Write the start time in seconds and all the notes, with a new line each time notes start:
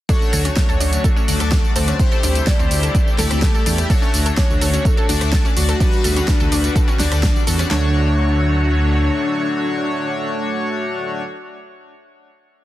0.09 F#3 A3 D4 F#4 A4 C#5 D5, kick, closed hi-hat, tambourine
0.22 tambourine
0.33 D2 A4 A5, open hi-hat, tambourine
0.45 C#4 C#5, closed hi-hat, tambourine
0.56 C#5, kick, snare, closed hi-hat, tambourine
0.69 D2 A4 A5, tambourine
0.80 D2 D4 D5, open hi-hat, tambourine
0.93 closed hi-hat, tambourine
1.04 A4 A5, kick, closed hi-hat, tambourine
1.16 C#4 C#5, tambourine
1.28 D2 A3 D4 F#4 D5, open hi-hat, tambourine
1.40 D2 A4 A5, cross-stick, closed hi-hat, tambourine
1.52 D4 D5, kick, snare, closed hi-hat, tambourine
1.65 tambourine
1.76 D2 A3 D4 F#4 A4 C5 D5 A5, open hi-hat, tambourine
1.88 C#4 C#5, cross-stick, closed hi-hat, tambourine
1.99 C3 G3 A3 E4 G4 C5, kick, closed hi-hat, tambourine
2.12 A4 A5, tambourine
2.23 D2 D4 D5, open hi-hat, tambourine
2.35 closed hi-hat, tambourine
2.47 A4 D5 A5, kick, snare, closed hi-hat, tambourine
2.59 D2 C4 C5, tambourine
2.71 D2, open hi-hat, tambourine
2.83 A4 A5, closed hi-hat, tambourine
2.95 D4 D5, kick, closed hi-hat, tambourine
3.07 tambourine
3.18 D2 A3 E4 G4 A4 D5 A5, snare, open hi-hat, tambourine
3.31 D2 C4 C5, cross-stick, closed hi-hat, tambourine
3.42 kick, snare, closed hi-hat, tambourine
3.54 A4 A5, tambourine
3.66 E2 A3 D4 E4 G4 D5, open hi-hat, tambourine
3.78 cross-stick, closed hi-hat, tambourine
3.90 A3 D4 F#4 A4 C#5 A5, kick, closed hi-hat, tambourine
4.02 C#4 C#5, tambourine
4.14 D2, open hi-hat, tambourine
4.26 A4 A5, closed hi-hat, tambourine
4.37 D4 C#5 D5, kick, snare, closed hi-hat, tambourine
4.50 D2, tambourine
4.61 D2 A4 A5, open hi-hat, tambourine
4.73 C#4 C#5, closed hi-hat, tambourine
4.85 A4, kick, closed hi-hat, tambourine
4.97 A4 A5, tambourine
5.09 D2 A3 D4 F#4 D5, open hi-hat, tambourine
5.21 D2, cross-stick, closed hi-hat, tambourine
5.33 A4 A5, kick, snare, closed hi-hat, tambourine
5.45 C#4 C#5, tambourine
5.56 D2 A3 D4 F#4 D5, open hi-hat, tambourine
5.69 A4 A5, cross-stick, closed hi-hat, tambourine
5.80 G3 B3 D4 F#4 B4 D5, kick, closed hi-hat, tambourine
5.93 tambourine
6.04 D2 A4 A5, open hi-hat, tambourine
6.16 C#4 C#5, closed hi-hat, tambourine
6.28 D4, kick, snare, closed hi-hat, tambourine
6.40 D2 A4 A5, tambourine
6.52 D2 D4 D5, open hi-hat, tambourine
6.64 closed hi-hat, tambourine
6.76 A4 A5, kick, closed hi-hat, tambourine
6.88 C#4 C#5, tambourine
6.99 D2 G3 D4 F#4 D5, snare, open hi-hat, tambourine
7.12 D2 A4 A5, cross-stick, closed hi-hat, tambourine
7.23 D4 D5, kick, snare, closed hi-hat, tambourine
7.36 tambourine
7.47 E2 G3 D4 F#4 A4 D5 A5, open hi-hat, tambourine
7.59 C#4 C#5, cross-stick, closed hi-hat, tambourine
7.71 D2 D3 F#3 A3 D4 F#4 C#5, snare, clap